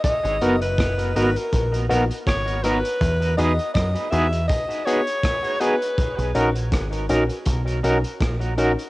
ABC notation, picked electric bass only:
X:1
M:4/4
L:1/16
Q:"Swing 16ths" 1/4=81
K:B
V:1 name="Picked electric bass" clef=bass
z G,,, F,,,2 F,,,2 G,,, z A,,,2 A,,, z G,,,3 z | E,,2 E,, z F,, z E,,2 z8 | z B,,, A,,,2 G,,,2 A,,, z B,,,2 B,,, z A,,,3 z |]